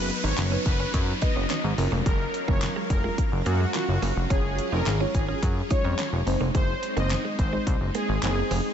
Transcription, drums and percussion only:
0.10 closed hi-hat
0.38 snare, clap, closed hi-hat
0.66 kick, closed hi-hat
0.94 kick, closed hi-hat
1.22 kick, closed hi-hat
1.50 snare, clap, closed hi-hat
1.78 open hi-hat
2.06 kick, closed hi-hat
2.34 closed hi-hat
2.48 kick
2.62 snare, clap, closed hi-hat
2.90 kick, closed hi-hat
3.18 kick, closed hi-hat
3.46 closed hi-hat
3.74 snare, clap, closed hi-hat
4.03 open hi-hat
4.30 kick, closed hi-hat
4.59 closed hi-hat
4.87 snare, clap, closed hi-hat
5.15 kick, closed hi-hat
5.43 kick, closed hi-hat
5.70 kick, closed hi-hat
5.99 snare, clap, closed hi-hat
6.27 open hi-hat
6.55 kick, closed hi-hat
6.83 closed hi-hat
6.97 closed hi-hat
7.11 snare, clap, closed hi-hat
7.39 kick, closed hi-hat
7.67 kick, closed hi-hat
7.95 closed hi-hat
8.23 snare, clap, closed hi-hat
8.51 open hi-hat

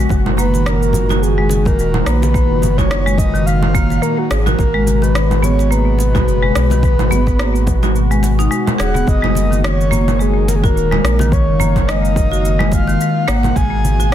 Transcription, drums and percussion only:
0.09 kick, high conga, shaker
0.26 low conga
0.37 high conga, shaker
0.54 muted conga, shaker
0.66 cross-stick, shaker
0.83 shaker
0.93 low conga, shaker
1.09 muted conga, low conga, shaker
1.23 shaker
1.49 muted conga, shaker
1.65 kick, low conga, shaker
1.79 shaker
1.94 low conga
2.06 cross-stick, shaker
2.22 muted conga, high conga, shaker
2.34 kick, high conga, shaker
2.62 high conga, low conga, shaker
2.78 kick, muted conga, low conga, shaker
2.91 cross-stick, shaker
3.07 shaker
3.18 kick, low conga, shaker
3.35 muted conga, shaker
3.47 shaker
3.63 low conga
3.75 kick, muted conga, shaker
3.90 muted conga, shaker
4.03 shaker
4.31 cross-stick, muted conga, shaker
4.46 high conga, low conga, shaker
4.59 kick, high conga, shaker
4.87 high conga, shaker
5.02 muted conga, shaker
5.15 cross-stick, shaker
5.31 low conga, shaker
5.43 low conga, shaker
5.59 muted conga, shaker
5.72 shaker
5.99 muted conga, shaker
6.15 kick, low conga, shaker
6.28 shaker
6.55 cross-stick, shaker
6.70 muted conga, high conga, shaker
6.83 kick, high conga, shaker
6.99 low conga, shaker
7.10 high conga, low conga, shaker
7.27 kick, muted conga, shaker
7.39 cross-stick, shaker
7.55 shaker
7.67 kick, low conga, shaker
7.83 muted conga, low conga, shaker
7.96 shaker
8.11 shaker
8.23 muted conga, shaker
8.39 muted conga, shaker
8.52 shaker
8.67 low conga, shaker
8.80 cross-stick, muted conga, shaker
8.95 high conga, shaker
9.07 kick, high conga, shaker
9.24 low conga
9.35 high conga, shaker
9.52 muted conga, shaker
9.64 cross-stick, shaker
9.81 shaker
9.92 low conga, shaker
10.08 muted conga, low conga, shaker
10.21 shaker
10.48 muted conga, shaker
10.64 kick, low conga, shaker
10.77 shaker
10.92 low conga
11.05 cross-stick, shaker
11.19 muted conga, high conga, shaker
11.32 kick, high conga, shaker
11.60 high conga, low conga, shaker
11.76 kick, muted conga, low conga, shaker
11.89 cross-stick, shaker
12.05 shaker
12.16 kick, low conga, shaker
12.31 muted conga, shaker
12.45 shaker
12.60 low conga
12.71 kick, muted conga, shaker
12.87 muted conga, shaker
13.01 shaker
13.28 cross-stick, muted conga, shaker
13.43 high conga, low conga, shaker
13.56 kick, high conga, shaker
13.85 high conga, shaker
14.00 muted conga, shaker

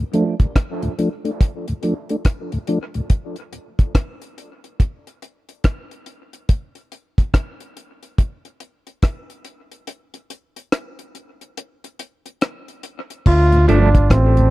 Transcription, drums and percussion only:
0.13 closed hi-hat
0.40 kick, closed hi-hat
0.56 kick, cross-stick, closed hi-hat
0.82 closed hi-hat
0.99 closed hi-hat
1.25 closed hi-hat
1.41 kick, closed hi-hat
1.68 closed hi-hat
1.83 closed hi-hat
2.09 closed hi-hat
2.25 kick, cross-stick, closed hi-hat
2.52 closed hi-hat
2.67 closed hi-hat
2.94 closed hi-hat
3.10 kick, closed hi-hat
3.36 closed hi-hat
3.53 closed hi-hat
3.79 kick, closed hi-hat
3.95 kick, cross-stick, closed hi-hat
4.22 closed hi-hat
4.38 closed hi-hat
4.64 closed hi-hat
4.80 kick, closed hi-hat
5.07 closed hi-hat
5.22 closed hi-hat
5.49 closed hi-hat
5.64 kick, cross-stick, closed hi-hat
5.91 closed hi-hat
6.06 closed hi-hat
6.33 closed hi-hat
6.49 kick, closed hi-hat
6.75 closed hi-hat
6.92 closed hi-hat
7.18 kick, closed hi-hat
7.34 kick, cross-stick, closed hi-hat
7.60 closed hi-hat
7.77 closed hi-hat
8.03 closed hi-hat
8.18 kick, closed hi-hat
8.45 closed hi-hat
8.60 closed hi-hat
8.87 closed hi-hat
9.02 kick, cross-stick, closed hi-hat
9.30 closed hi-hat
9.45 closed hi-hat
9.72 closed hi-hat
9.87 closed hi-hat
10.14 closed hi-hat
10.30 closed hi-hat
10.56 closed hi-hat
10.72 cross-stick, closed hi-hat
10.99 closed hi-hat
11.15 closed hi-hat
11.41 closed hi-hat
11.57 closed hi-hat
11.84 closed hi-hat
11.99 closed hi-hat
12.26 closed hi-hat
12.41 cross-stick, closed hi-hat
12.68 closed hi-hat
12.83 closed hi-hat
13.10 closed hi-hat
13.26 kick, crash
13.52 closed hi-hat
13.69 closed hi-hat
13.95 kick, closed hi-hat
14.10 kick, cross-stick, closed hi-hat
14.37 closed hi-hat

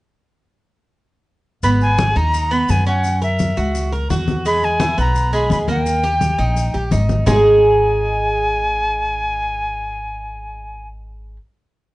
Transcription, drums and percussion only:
1.63 high conga, maracas
1.81 high conga, maracas
1.98 high conga, maracas
2.16 high conga, maracas
2.34 high conga, maracas
2.51 high conga, maracas
2.69 high conga, maracas
2.86 maracas
3.04 high conga, maracas
3.22 high conga, maracas
3.39 high conga, maracas
3.57 maracas
3.75 high conga, maracas
3.92 high conga, maracas
4.10 high conga, maracas
4.28 high conga, maracas
4.45 high conga, maracas
4.62 high conga, maracas
4.80 high conga, maracas
4.98 high conga, maracas
5.15 high conga, maracas
5.32 high conga, maracas
5.50 high conga, maracas
5.68 high conga, maracas
5.86 high conga, maracas
6.03 high conga, maracas
6.21 high conga, maracas
6.39 maracas
6.56 high conga, maracas
6.74 high conga, maracas
6.91 high conga, maracas
7.09 high conga, maracas
7.27 low conga, maracas

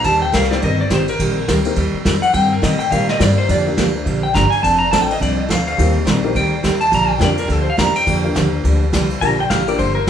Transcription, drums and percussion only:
0.04 kick, ride
0.33 kick, snare, hi-hat pedal, ride
0.44 snare
0.52 snare
0.62 kick, ride
0.90 kick, snare, hi-hat pedal, ride
1.08 ride
1.19 kick, ride
1.48 kick, snare, hi-hat pedal, ride
1.65 ride
1.76 kick, ride
2.05 kick, snare, hi-hat pedal, ride
2.23 ride
2.34 kick, ride
2.63 kick, snare, hi-hat pedal, ride
2.80 ride
2.92 kick, ride
3.09 snare
3.20 kick, snare, hi-hat pedal, ride
3.49 kick, ride
3.78 kick, snare, hi-hat pedal, ride
4.06 kick, ride
4.35 kick, snare, hi-hat pedal, ride
4.52 ride
4.64 kick, ride
4.92 kick, snare, hi-hat pedal, ride
5.10 ride
5.21 kick, ride
5.50 kick, snare, hi-hat pedal, ride
5.67 ride
5.79 kick, ride
6.07 kick, snare, hi-hat pedal, ride
6.35 kick, ride
6.64 kick, snare, hi-hat pedal, ride
6.81 ride
6.92 kick, ride
7.21 kick, snare, hi-hat pedal, ride
7.37 ride
7.49 kick, ride
7.78 kick, snare, hi-hat pedal, ride
7.96 ride
8.07 kick, ride
8.35 kick, snare, hi-hat pedal, ride
8.64 kick, ride
8.93 kick, snare, hi-hat pedal, ride
9.10 ride
9.22 kick, ride
9.50 kick, snare, hi-hat pedal, ride
9.68 ride
9.79 kick, ride

